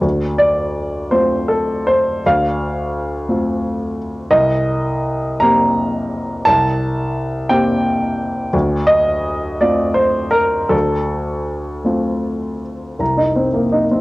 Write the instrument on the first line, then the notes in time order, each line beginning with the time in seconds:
grand piano
0.01 D2
0.38 D5
1.11 A3 C4 F4 C5
1.48 A4
1.87 C5
2.26 D2 F5
3.29 A3 C4 F4
4.31 C2 D#5
5.40 A#3 C4 G4 A#5
6.45 C2 A5
7.49 A#3 C4 G4 G5
8.53 D2
8.86 D#5
9.60 A3 C4 F4 D5
9.94 C5
10.31 A#4
10.69 D2 A4
11.85 A3 C4 F4
12.99 C2 A#5
13.17 D#4 D#5
13.36 C4 C5
13.54 A#3 A#4
13.72 D#4 D#5
13.91 C4 C5